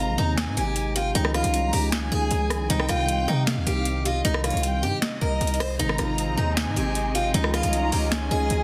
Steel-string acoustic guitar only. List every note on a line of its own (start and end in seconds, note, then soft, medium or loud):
0.00 0.16 F4 medium
0.18 0.33 D#4 medium
0.57 0.93 G4 medium
0.96 1.10 F4 medium
1.15 1.30 D#4 loud
1.34 1.71 F4 medium
1.73 1.88 G4 medium
2.12 2.66 G#4 medium
2.70 2.85 D#4 loud
2.89 3.26 F4 medium
3.28 3.43 D#4 medium
3.67 4.03 G4 loud
4.06 4.20 F4 medium
4.25 4.40 D#4 loud
4.44 4.80 F4 medium
4.83 4.98 G4 medium
5.21 5.58 A#4 medium
5.60 5.75 C5 medium
5.79 5.94 D#4 loud
5.99 6.35 F4 medium
6.37 6.52 D#4 medium
6.76 7.13 G4 medium
7.15 7.30 F4 medium
7.34 7.49 D#4 loud
7.54 7.90 F4 medium
7.92 8.07 G4 medium
8.31 8.63 G#4 medium